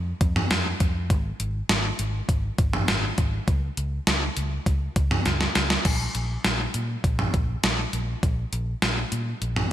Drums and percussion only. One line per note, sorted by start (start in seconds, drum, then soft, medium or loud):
0.21 kick loud
0.21 closed hi-hat medium
0.36 mid tom loud
0.51 snare loud
0.51 closed hi-hat medium
0.80 kick loud
0.80 closed hi-hat medium
1.10 kick loud
1.10 closed hi-hat medium
1.40 closed hi-hat medium
1.69 snare loud
1.69 closed hi-hat medium
1.99 closed hi-hat medium
2.29 kick loud
2.29 closed hi-hat medium
2.58 kick loud
2.58 closed hi-hat medium
2.73 mid tom loud
2.88 snare loud
2.88 closed hi-hat medium
3.18 kick medium
3.18 closed hi-hat medium
3.48 kick loud
3.48 closed hi-hat medium
3.77 closed hi-hat medium
4.07 snare loud
4.07 closed hi-hat medium
4.37 closed hi-hat medium
4.66 kick loud
4.66 closed hi-hat medium
4.96 kick loud
4.96 closed hi-hat medium
5.11 mid tom loud
5.26 snare medium
5.26 closed hi-hat medium
5.41 snare medium
5.55 snare medium
5.55 closed hi-hat medium
5.70 snare medium
5.85 kick loud
5.85 closed hi-hat medium
5.85 crash loud
6.15 closed hi-hat medium
6.45 snare loud
6.45 closed hi-hat medium
6.74 closed hi-hat medium
7.04 kick loud
7.04 closed hi-hat medium
7.19 mid tom medium
7.34 kick loud
7.34 closed hi-hat medium
7.63 snare loud
7.63 closed hi-hat medium
7.93 closed hi-hat medium
8.23 kick loud
8.23 closed hi-hat medium
8.53 closed hi-hat medium
8.82 snare loud
8.82 closed hi-hat medium
9.12 closed hi-hat medium
9.42 closed hi-hat medium
9.56 mid tom medium